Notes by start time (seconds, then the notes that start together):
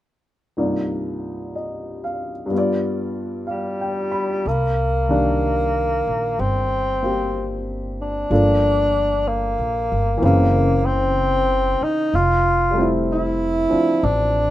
0.57 C2 G2 A#3 D#4 F4 D5
1.55 D#5
2.04 F5
2.46 G2 G3
2.51 B3 F4
2.58 D5
3.47 G3 F5
3.81 G5
4.11 B5
4.45 C2 A#3
5.09 D#3 G3 A#3 D4
6.07 A#1
6.39 G1 C4
7.02 A#3 C4 G4
8.02 D4
8.30 G1 F3 A#3 D4 A4
9.28 A#3
9.58 A#1
9.92 G1
10.17 E3 A#3
10.22 F#1 C#3 A#3 C4
10.86 C4
11.81 D#4, muted upright bass stroke
12.14 F1 F4
12.71 G3 A3
12.78 C4 E4
13.12 E4
13.69 F3 C4 D4, muted upright bass stroke
14.03 A1 D4